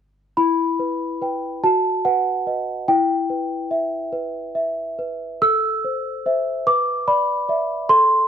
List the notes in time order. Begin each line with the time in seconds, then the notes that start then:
0.37 E4 B5
0.79 B4
1.22 B4 G5
1.64 F#4 A5
2.05 B4 F#5
2.47 B4 D#5
2.88 E4 G5
3.30 B4
3.71 E5
4.13 B4
4.55 E5
4.99 B4
5.42 A4 E6
5.85 C5
6.26 C5 E5
6.67 B4 D6
7.08 D5 B5
7.49 D5 E5
7.89 A4 C6